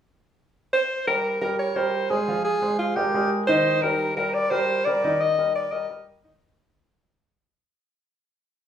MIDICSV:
0, 0, Header, 1, 3, 480
1, 0, Start_track
1, 0, Key_signature, -3, "major"
1, 0, Tempo, 344432
1, 1253, Time_signature, 4, 2, 24, 8
1, 12095, End_track
2, 0, Start_track
2, 0, Title_t, "Alto saxophone"
2, 0, Program_c, 0, 65
2, 1019, Note_on_c, 0, 72, 89
2, 1463, Note_off_c, 0, 72, 0
2, 1496, Note_on_c, 0, 70, 84
2, 1941, Note_off_c, 0, 70, 0
2, 1968, Note_on_c, 0, 70, 78
2, 2194, Note_off_c, 0, 70, 0
2, 2218, Note_on_c, 0, 73, 81
2, 2446, Note_on_c, 0, 72, 78
2, 2467, Note_off_c, 0, 73, 0
2, 2926, Note_on_c, 0, 68, 87
2, 2947, Note_off_c, 0, 72, 0
2, 3396, Note_off_c, 0, 68, 0
2, 3404, Note_on_c, 0, 68, 93
2, 3854, Note_off_c, 0, 68, 0
2, 3882, Note_on_c, 0, 65, 79
2, 4118, Note_on_c, 0, 67, 89
2, 4139, Note_off_c, 0, 65, 0
2, 4604, Note_off_c, 0, 67, 0
2, 4836, Note_on_c, 0, 72, 91
2, 5327, Note_on_c, 0, 70, 94
2, 5348, Note_off_c, 0, 72, 0
2, 5795, Note_off_c, 0, 70, 0
2, 5804, Note_on_c, 0, 70, 83
2, 6050, Note_on_c, 0, 74, 93
2, 6071, Note_off_c, 0, 70, 0
2, 6276, Note_on_c, 0, 72, 102
2, 6297, Note_off_c, 0, 74, 0
2, 6753, Note_on_c, 0, 74, 95
2, 6774, Note_off_c, 0, 72, 0
2, 7255, Note_on_c, 0, 75, 109
2, 7276, Note_off_c, 0, 74, 0
2, 7730, Note_off_c, 0, 75, 0
2, 7735, Note_on_c, 0, 74, 96
2, 7968, Note_on_c, 0, 75, 86
2, 7989, Note_off_c, 0, 74, 0
2, 8446, Note_off_c, 0, 75, 0
2, 12095, End_track
3, 0, Start_track
3, 0, Title_t, "Grand piano"
3, 0, Program_c, 1, 0
3, 1494, Note_on_c, 1, 55, 67
3, 1502, Note_on_c, 1, 67, 69
3, 1507, Note_on_c, 1, 70, 67
3, 1888, Note_off_c, 1, 55, 0
3, 1892, Note_off_c, 1, 67, 0
3, 1895, Note_off_c, 1, 70, 0
3, 1969, Note_on_c, 1, 67, 67
3, 1970, Note_on_c, 1, 55, 72
3, 1978, Note_on_c, 1, 70, 75
3, 2364, Note_off_c, 1, 67, 0
3, 2365, Note_off_c, 1, 55, 0
3, 2370, Note_off_c, 1, 70, 0
3, 2447, Note_on_c, 1, 55, 68
3, 2452, Note_on_c, 1, 67, 68
3, 2457, Note_on_c, 1, 70, 69
3, 2843, Note_off_c, 1, 55, 0
3, 2846, Note_off_c, 1, 67, 0
3, 2849, Note_off_c, 1, 70, 0
3, 2928, Note_on_c, 1, 56, 71
3, 2932, Note_on_c, 1, 68, 73
3, 2942, Note_on_c, 1, 72, 66
3, 3127, Note_off_c, 1, 56, 0
3, 3129, Note_off_c, 1, 68, 0
3, 3135, Note_off_c, 1, 72, 0
3, 3174, Note_on_c, 1, 53, 64
3, 3184, Note_on_c, 1, 65, 75
3, 3192, Note_on_c, 1, 77, 71
3, 3567, Note_off_c, 1, 53, 0
3, 3572, Note_off_c, 1, 65, 0
3, 3578, Note_off_c, 1, 77, 0
3, 3650, Note_on_c, 1, 56, 65
3, 3655, Note_on_c, 1, 68, 55
3, 3658, Note_on_c, 1, 72, 59
3, 4044, Note_off_c, 1, 56, 0
3, 4047, Note_off_c, 1, 68, 0
3, 4049, Note_off_c, 1, 72, 0
3, 4125, Note_on_c, 1, 56, 67
3, 4132, Note_on_c, 1, 68, 64
3, 4139, Note_on_c, 1, 70, 65
3, 4324, Note_off_c, 1, 56, 0
3, 4328, Note_off_c, 1, 68, 0
3, 4332, Note_off_c, 1, 70, 0
3, 4379, Note_on_c, 1, 56, 75
3, 4379, Note_on_c, 1, 68, 68
3, 4390, Note_on_c, 1, 70, 70
3, 4768, Note_off_c, 1, 56, 0
3, 4768, Note_off_c, 1, 68, 0
3, 4775, Note_off_c, 1, 70, 0
3, 4856, Note_on_c, 1, 63, 81
3, 4858, Note_on_c, 1, 51, 82
3, 4864, Note_on_c, 1, 75, 82
3, 5246, Note_off_c, 1, 63, 0
3, 5247, Note_off_c, 1, 51, 0
3, 5251, Note_off_c, 1, 75, 0
3, 5330, Note_on_c, 1, 55, 70
3, 5336, Note_on_c, 1, 67, 72
3, 5339, Note_on_c, 1, 70, 72
3, 5722, Note_off_c, 1, 55, 0
3, 5725, Note_off_c, 1, 67, 0
3, 5727, Note_off_c, 1, 70, 0
3, 5813, Note_on_c, 1, 55, 72
3, 5821, Note_on_c, 1, 67, 75
3, 5829, Note_on_c, 1, 70, 74
3, 6203, Note_off_c, 1, 55, 0
3, 6208, Note_off_c, 1, 67, 0
3, 6213, Note_off_c, 1, 70, 0
3, 6284, Note_on_c, 1, 55, 73
3, 6287, Note_on_c, 1, 67, 62
3, 6295, Note_on_c, 1, 70, 70
3, 6678, Note_off_c, 1, 55, 0
3, 6680, Note_off_c, 1, 67, 0
3, 6684, Note_off_c, 1, 70, 0
3, 6778, Note_on_c, 1, 67, 74
3, 6785, Note_on_c, 1, 55, 74
3, 6789, Note_on_c, 1, 70, 66
3, 6969, Note_off_c, 1, 67, 0
3, 6973, Note_off_c, 1, 55, 0
3, 6976, Note_off_c, 1, 70, 0
3, 7022, Note_on_c, 1, 51, 74
3, 7024, Note_on_c, 1, 75, 68
3, 7026, Note_on_c, 1, 63, 74
3, 7408, Note_off_c, 1, 51, 0
3, 7410, Note_off_c, 1, 63, 0
3, 7410, Note_off_c, 1, 75, 0
3, 7498, Note_on_c, 1, 55, 59
3, 7499, Note_on_c, 1, 67, 65
3, 7507, Note_on_c, 1, 70, 60
3, 7886, Note_off_c, 1, 55, 0
3, 7886, Note_off_c, 1, 67, 0
3, 7891, Note_off_c, 1, 70, 0
3, 7968, Note_on_c, 1, 55, 60
3, 7979, Note_on_c, 1, 70, 62
3, 7980, Note_on_c, 1, 67, 63
3, 8163, Note_off_c, 1, 55, 0
3, 8170, Note_off_c, 1, 67, 0
3, 8170, Note_off_c, 1, 70, 0
3, 8221, Note_on_c, 1, 55, 69
3, 8232, Note_on_c, 1, 67, 68
3, 8233, Note_on_c, 1, 70, 65
3, 8608, Note_off_c, 1, 55, 0
3, 8614, Note_off_c, 1, 67, 0
3, 8615, Note_off_c, 1, 70, 0
3, 8696, Note_on_c, 1, 51, 84
3, 8702, Note_on_c, 1, 63, 80
3, 8708, Note_on_c, 1, 75, 85
3, 8888, Note_off_c, 1, 51, 0
3, 8892, Note_off_c, 1, 63, 0
3, 8895, Note_off_c, 1, 75, 0
3, 12095, End_track
0, 0, End_of_file